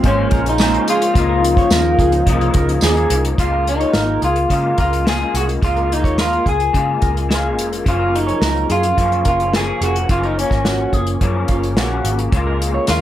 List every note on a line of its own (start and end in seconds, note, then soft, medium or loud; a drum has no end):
0.00 0.26 G#1 medium
0.00 1.13 C#3 medium
0.00 1.13 F3 medium
0.00 1.13 G#3 medium
0.00 0.58 G#3 medium
0.00 3.34 A#3 medium
0.00 1.13 F4 medium
0.00 kick medium
0.00 closed hi-hat medium
0.04 0.60 C#4 medium
0.04 0.49 C#4 loud
0.04 0.60 F4 medium
0.04 0.60 C5 medium
0.31 0.76 A#1 loud
0.31 0.45 A#4 medium
0.31 kick loud
0.31 closed hi-hat medium
0.46 0.87 D#4 medium
0.46 closed hi-hat medium
0.58 1.15 G#3 medium
0.58 1.16 C#4 medium
0.58 1.18 F4 medium
0.58 1.16 C5 medium
0.58 snare loud
0.58 tambourine medium
0.74 closed hi-hat soft
0.88 2.80 F4 medium
0.88 1.02 G#4 medium
0.88 closed hi-hat medium
1.02 closed hi-hat medium
1.13 1.60 C#2 loud
1.13 2.25 C#3 medium
1.13 3.36 C#3 medium
1.13 3.36 F3 medium
1.13 2.27 F3 medium
1.13 2.28 A#3 medium
1.13 3.36 D#4 loud
1.13 kick loud
1.13 closed hi-hat medium
1.18 2.28 D#4 medium
1.29 1.43 A#4 medium
1.44 closed hi-hat medium
1.57 1.71 C#5 medium
1.57 kick loud
1.57 closed hi-hat medium
1.70 1.93 D#2 medium
1.70 1.98 A#4 medium
1.70 snare loud
1.70 tambourine medium
1.99 2.21 C#2 medium
1.99 2.13 G#4 medium
1.99 kick medium
1.99 closed hi-hat medium
2.12 closed hi-hat medium
2.26 2.49 C2 medium
2.26 2.81 C#3 medium
2.26 2.83 F3 medium
2.26 2.84 A#3 medium
2.26 2.84 D#4 medium
2.26 kick medium
2.26 closed hi-hat medium
2.41 closed hi-hat soft
2.54 2.77 C#2 medium
2.54 2.68 A#4 medium
2.54 kick medium
2.54 closed hi-hat medium
2.69 closed hi-hat medium
2.81 3.05 D#2 medium
2.81 3.37 C#3 medium
2.81 3.39 F3 medium
2.81 3.40 A#3 medium
2.81 3.22 G#4 medium
2.81 snare loud
2.81 tambourine medium
2.86 3.40 D#4 medium
2.97 closed hi-hat soft
3.10 3.33 C2 medium
3.10 closed hi-hat medium
3.25 closed hi-hat medium
3.38 3.83 C#2 medium
3.38 3.66 C#3 medium
3.38 3.67 G#3 medium
3.38 3.66 A#3 medium
3.38 3.68 F4 medium
3.38 3.65 F4 medium
3.38 kick loud
3.38 closed hi-hat medium
3.53 3.66 A#4 medium
3.66 4.50 G#3 soft
3.66 4.51 A#3 soft
3.66 4.20 D#4 medium
3.66 4.52 F4 soft
3.66 closed hi-hat medium
3.80 3.93 C#5 medium
3.80 closed hi-hat soft
3.93 4.17 G#1 medium
3.93 4.20 A#4 medium
3.93 snare loud
4.22 4.45 C#2 medium
4.22 4.79 F4 medium
4.22 4.35 G#4 medium
4.22 closed hi-hat medium
4.36 closed hi-hat soft
4.50 5.04 C#3 soft
4.50 4.73 C#3 medium
4.50 5.05 G#3 soft
4.50 5.07 A#3 medium
4.50 5.08 F4 medium
4.50 kick medium
4.50 closed hi-hat medium
4.78 5.23 C#2 medium
4.78 5.08 F4 medium
4.78 4.91 A#4 medium
4.78 kick medium
4.78 closed hi-hat medium
4.93 closed hi-hat medium
5.05 5.60 C#3 medium
5.05 5.61 G#3 medium
5.05 5.63 A#3 medium
5.05 5.63 F4 medium
5.05 snare medium
5.09 5.36 G#4 medium
5.22 closed hi-hat soft
5.34 5.56 C2 medium
5.34 5.44 F#4 medium
5.34 5.47 G#4 medium
5.34 closed hi-hat medium
5.49 closed hi-hat soft
5.62 6.04 C#2 medium
5.62 5.90 C#3 medium
5.62 5.90 G#3 medium
5.62 5.90 A#3 medium
5.62 5.88 F4 medium
5.62 5.92 F4 medium
5.62 kick loud
5.62 closed hi-hat medium
5.76 5.90 A#4 medium
5.76 closed hi-hat soft
5.89 6.74 G#3 soft
5.89 6.75 A#3 soft
5.89 6.76 F4 soft
5.89 closed hi-hat medium
5.93 6.20 D#4 medium
6.04 6.37 D#2 medium
6.04 6.17 C#5 medium
6.04 kick medium
6.04 closed hi-hat soft
6.18 6.48 F4 medium
6.18 6.45 A#4 medium
6.18 snare loud
6.33 closed hi-hat soft
6.46 6.68 C#2 medium
6.46 6.59 G#4 medium
6.46 7.55 G#4 medium
6.46 kick medium
6.46 closed hi-hat medium
6.60 closed hi-hat soft
6.73 7.27 C#3 medium
6.73 6.96 C#3 medium
6.73 7.29 G#3 medium
6.73 7.30 A#3 medium
6.73 7.32 F4 medium
6.73 kick medium
6.73 closed hi-hat medium
7.02 7.58 C#2 medium
7.02 7.15 A#4 medium
7.02 kick medium
7.02 closed hi-hat medium
7.17 closed hi-hat soft
7.29 7.85 C#3 medium
7.29 7.86 G#3 medium
7.29 7.88 A#3 medium
7.29 7.87 F4 medium
7.29 7.69 G#4 medium
7.29 snare medium
7.58 7.80 F1 medium
7.58 closed hi-hat medium
7.73 closed hi-hat soft
7.84 8.31 F#1 medium
7.84 8.97 F#2 medium
7.84 8.96 C#3 medium
7.84 8.98 F3 medium
7.84 kick loud
7.84 closed hi-hat medium
7.88 8.99 A#3 medium
7.88 9.00 C#4 medium
7.88 8.16 F4 medium
7.99 8.13 A#4 medium
8.16 8.72 D#4 medium
8.16 closed hi-hat medium
8.27 8.41 C#5 medium
8.27 closed hi-hat soft
8.41 8.64 C#2 medium
8.41 8.68 A#4 medium
8.41 snare loud
8.57 closed hi-hat soft
8.69 8.92 F#2 medium
8.69 9.27 F4 medium
8.69 8.83 G#4 medium
8.69 closed hi-hat medium
8.83 closed hi-hat soft
8.97 9.27 F#2 medium
8.97 9.51 C#3 medium
8.97 9.53 F3 medium
8.97 9.55 A#3 medium
8.97 9.56 C#4 medium
8.97 kick medium
8.97 closed hi-hat medium
9.12 closed hi-hat soft
9.25 9.70 F#1 medium
9.25 9.53 F4 medium
9.25 9.39 A#4 medium
9.25 kick medium
9.25 closed hi-hat medium
9.40 closed hi-hat soft
9.53 10.08 C#3 medium
9.53 10.10 F3 medium
9.53 10.10 A#3 medium
9.53 10.11 C#4 medium
9.53 9.83 G#4 medium
9.53 snare medium
9.81 10.04 F1 medium
9.81 10.11 F#4 medium
9.81 9.94 G#4 medium
9.81 closed hi-hat medium
9.96 closed hi-hat soft
10.09 10.43 F#1 medium
10.09 10.37 F#2 medium
10.09 10.37 C#3 medium
10.09 10.38 F3 medium
10.09 10.38 A#3 medium
10.09 10.36 C#4 medium
10.09 10.25 F4 medium
10.09 kick loud
10.09 closed hi-hat medium
10.23 10.39 D#4 medium
10.23 10.37 A#4 medium
10.23 closed hi-hat soft
10.37 11.22 F3 soft
10.37 11.23 A#3 soft
10.37 11.24 C#4 soft
10.37 12.02 C#4 medium
10.37 closed hi-hat medium
10.50 10.85 G#1 medium
10.50 10.64 A#4 medium
10.50 kick medium
10.50 snare soft
10.50 closed hi-hat soft
10.64 10.93 F#4 medium
10.64 snare loud
10.93 11.15 F#1 medium
10.93 11.06 G#4 medium
10.93 kick medium
10.93 closed hi-hat medium
11.07 closed hi-hat soft
11.21 11.44 F#2 medium
11.21 11.75 C#3 medium
11.21 12.33 F3 medium
11.21 11.78 A#3 medium
11.21 11.79 C#4 medium
11.21 kick medium
11.21 closed hi-hat medium
11.48 11.77 F#1 medium
11.48 11.62 F4 medium
11.48 kick medium
11.48 closed hi-hat medium
11.64 closed hi-hat soft
11.76 11.99 A#1 medium
11.76 12.31 C#3 medium
11.76 12.35 A#3 medium
11.76 12.36 C#4 medium
11.76 12.17 F#4 medium
11.76 snare loud
12.04 12.27 G#1 medium
12.04 closed hi-hat medium
12.19 closed hi-hat soft
12.32 12.78 C#2 medium
12.32 13.01 C#3 medium
12.32 13.01 G#3 medium
12.32 13.01 A#3 medium
12.32 kick loud
12.32 closed hi-hat medium
12.37 13.01 F4 medium
12.47 12.60 A#4 medium
12.62 closed hi-hat medium
12.74 12.87 C#5 medium
12.87 13.01 D#2 medium
12.87 13.01 F4 medium
12.87 13.01 A#4 medium
12.87 snare loud
12.87 closed hi-hat medium